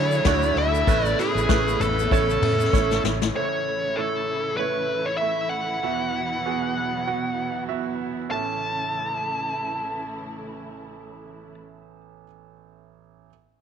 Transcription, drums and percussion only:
0.11 shaker medium
0.25 kick loud
0.25 snare loud
0.25 ride medium
0.25 shaker medium
0.42 shaker soft
0.56 ride medium
0.75 shaker medium
0.87 kick loud
0.87 ride medium
0.87 shaker medium
1.06 shaker soft
1.19 ride medium
1.19 shaker soft
1.38 shaker medium
1.49 kick loud
1.49 snare loud
1.49 ride medium
1.49 shaker medium
1.68 shaker soft
1.80 floor tom medium
1.80 ride medium
1.80 shaker medium
1.99 shaker medium
2.11 kick loud
2.11 ride medium
2.11 shaker medium
2.30 shaker medium
2.42 floor tom medium
2.42 ride medium
2.60 shaker medium
2.73 kick loud
2.73 snare medium
2.73 shaker medium
2.91 snare medium
2.91 shaker soft
3.05 snare medium
3.05 shaker soft
3.22 snare loud
3.22 shaker medium

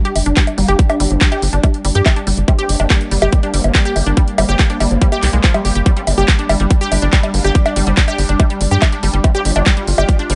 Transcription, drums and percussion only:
0.05 closed hi-hat medium
0.16 open hi-hat loud
0.16 high bongo soft
0.26 closed hi-hat medium
0.37 kick loud
0.37 clap loud
0.37 closed hi-hat medium
0.47 closed hi-hat medium
0.47 high bongo soft
0.58 open hi-hat medium
0.68 closed hi-hat medium
0.79 kick loud
0.79 closed hi-hat medium
0.90 closed hi-hat medium
0.90 high bongo medium
1.00 open hi-hat loud
1.11 closed hi-hat medium
1.21 kick loud
1.21 clap loud
1.21 closed hi-hat medium
1.32 closed hi-hat medium
1.32 high bongo soft
1.42 open hi-hat loud
1.53 closed hi-hat medium
1.63 kick loud
1.63 closed hi-hat medium
1.63 high bongo soft
1.74 closed hi-hat medium
1.85 open hi-hat loud
1.95 closed hi-hat medium
2.06 kick loud
2.06 clap loud
2.06 closed hi-hat medium
2.06 high bongo medium
2.16 closed hi-hat medium
2.27 open hi-hat loud
2.37 closed hi-hat medium
2.48 kick loud
2.48 closed hi-hat medium
2.48 high bongo soft
2.59 closed hi-hat medium
2.69 open hi-hat loud
2.80 high bongo soft
2.90 kick loud
2.90 clap loud
2.90 closed hi-hat medium
3.01 closed hi-hat medium
3.11 open hi-hat loud
3.22 closed hi-hat soft
3.22 high bongo medium
3.33 kick loud
3.33 closed hi-hat medium
3.43 closed hi-hat soft
3.54 open hi-hat loud
3.64 closed hi-hat medium
3.64 high bongo soft
3.75 kick loud
3.75 clap loud
3.75 closed hi-hat medium
3.85 closed hi-hat medium
3.96 open hi-hat loud
3.96 high bongo soft
4.06 closed hi-hat medium
4.17 kick loud
4.17 closed hi-hat medium
4.28 closed hi-hat medium
4.38 open hi-hat loud
4.38 high bongo medium
4.59 kick loud
4.59 clap loud
4.59 closed hi-hat medium
4.70 closed hi-hat soft
4.80 open hi-hat loud
4.80 high bongo soft
5.01 kick loud
5.01 closed hi-hat medium
5.12 closed hi-hat soft
5.12 high bongo soft
5.23 clap medium
5.23 open hi-hat loud
5.33 closed hi-hat medium
5.44 kick loud
5.44 clap loud
5.44 closed hi-hat medium
5.54 closed hi-hat medium
5.54 high bongo medium
5.65 open hi-hat loud
5.75 closed hi-hat soft
5.86 kick loud
5.86 closed hi-hat medium
5.97 closed hi-hat medium
6.07 open hi-hat loud
6.07 high bongo soft
6.18 closed hi-hat medium
6.28 kick loud
6.28 clap loud
6.28 closed hi-hat medium
6.39 closed hi-hat soft
6.49 open hi-hat medium
6.49 high bongo medium
6.60 closed hi-hat soft
6.71 kick loud
6.71 closed hi-hat medium
6.81 closed hi-hat medium
6.92 open hi-hat loud
6.92 high bongo soft
7.13 kick loud
7.13 clap loud
7.13 closed hi-hat medium
7.23 closed hi-hat medium
7.23 high bongo soft
7.34 open hi-hat medium
7.44 closed hi-hat soft
7.55 kick loud
7.55 closed hi-hat medium
7.66 closed hi-hat medium
7.66 high bongo medium
7.76 open hi-hat loud
7.87 closed hi-hat medium
7.97 kick loud
7.97 clap loud
7.97 closed hi-hat medium
8.08 closed hi-hat medium
8.08 high bongo soft
8.18 open hi-hat medium
8.29 closed hi-hat medium
8.40 kick loud
8.40 closed hi-hat medium
8.40 high bongo soft
8.50 closed hi-hat medium
8.61 open hi-hat loud
8.71 closed hi-hat medium
8.82 kick loud
8.82 clap loud
8.82 closed hi-hat medium
8.82 high bongo medium
8.92 closed hi-hat medium
9.03 open hi-hat medium
9.13 closed hi-hat soft
9.24 kick loud
9.24 closed hi-hat medium
9.24 high bongo soft
9.35 closed hi-hat medium
9.45 open hi-hat loud
9.56 closed hi-hat medium
9.56 high bongo soft
9.66 kick loud
9.66 clap loud
9.66 closed hi-hat medium
9.77 closed hi-hat medium
9.87 open hi-hat medium
9.98 closed hi-hat medium
9.98 high bongo medium
10.09 kick loud
10.09 closed hi-hat medium
10.19 closed hi-hat medium
10.30 open hi-hat loud

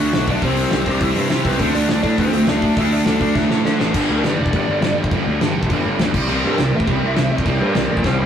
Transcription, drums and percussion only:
0.13 snare loud
0.13 open hi-hat medium
0.27 kick medium
0.27 open hi-hat medium
0.42 kick loud
0.42 open hi-hat medium
0.57 open hi-hat medium
0.71 snare loud
0.71 open hi-hat medium
0.86 kick medium
0.86 open hi-hat medium
1.01 kick loud
1.01 open hi-hat medium
1.15 open hi-hat medium
1.30 snare loud
1.30 open hi-hat medium
1.45 kick medium
1.45 open hi-hat medium
1.59 kick medium
1.59 open hi-hat medium
1.75 open hi-hat medium
1.89 snare loud
1.89 open hi-hat medium
2.04 kick medium
2.04 open hi-hat medium
2.18 kick loud
2.18 open hi-hat medium
2.33 open hi-hat medium
2.47 snare loud
2.47 open hi-hat medium
2.62 kick medium
2.62 open hi-hat medium
2.77 kick loud
2.77 open hi-hat medium
2.91 open hi-hat medium
3.06 snare loud
3.06 open hi-hat medium
3.21 kick medium
3.21 open hi-hat medium
3.35 kick loud
3.35 snare medium
3.50 snare medium
3.65 snare medium
3.80 snare medium
3.94 kick loud
3.94 crash loud
3.94 crash medium
4.24 snare loud
4.24 crash medium
4.46 kick medium
4.53 kick loud
4.53 crash medium
4.82 snare loud
4.82 crash medium
5.04 kick medium
5.11 kick medium
5.11 crash medium
5.41 snare loud
5.41 crash medium
5.63 kick medium
5.70 kick medium
5.70 crash medium
5.99 snare loud
5.99 crash medium
6.14 kick loud
6.14 crash loud
6.29 crash medium
6.58 snare loud
6.58 crash medium
6.80 kick medium
6.87 kick loud
6.87 crash medium
7.16 snare loud
7.16 crash medium
7.38 kick medium
7.46 kick loud
7.46 crash medium
7.75 snare loud
7.75 crash medium
7.97 kick medium
8.04 kick loud
8.04 snare medium

